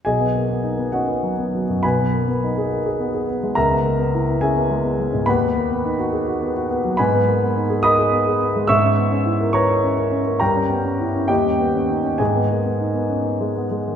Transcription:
X:1
M:6/8
L:1/16
Q:3/8=70
K:B
V:1 name="Grand piano"
[Gdg]6 [Fdf]6 | [Bgb]8- [Bgb]2 z2 | [Aea]6 [Geg]6 | [Bfb]8- [Bfb]2 z2 |
[K:G#m] [Bgb]6 [dbd']6 | [ec'e']6 [cac']6 | [_B=g_b]6 [=Gdg]6 | [Gdg]8- [Gdg]2 z2 |]
V:2 name="Grand piano"
B,,, B, A, B, D B, C B, F, B, F, F,, | B,,, B, A, B, D G A G B, G B, G, | C,, B, A, B, E B, C B, G, B, G, G,, | D,, B, A, B, D F G F B, F B, F, |
[K:G#m] G,, B, A, B, D G A G B, G B, G, | G,, C B, C E A B A C A C A, | =G,, _D B, D E D ^D,, C B, C ^D C | G,, B, A, B, D B, C B, G, B, G, D, |]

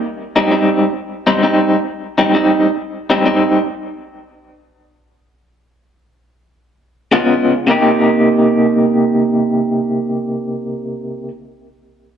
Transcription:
X:1
M:4/4
L:1/8
Q:"Swing" 1/4=123
K:Cm
V:1 name="Clean electric guitar"
z [A,,G,CE] [A,,G,CE] z2 [A,,G,CE] [A,,G,CE] z | z [A,,G,CE] [A,,G,CE] z2 [A,,G,CE] [A,,G,CE] z | z8 | z6 [_D,A,_CF] z |
[C,B,EG]8- | [C,B,EG]8 |]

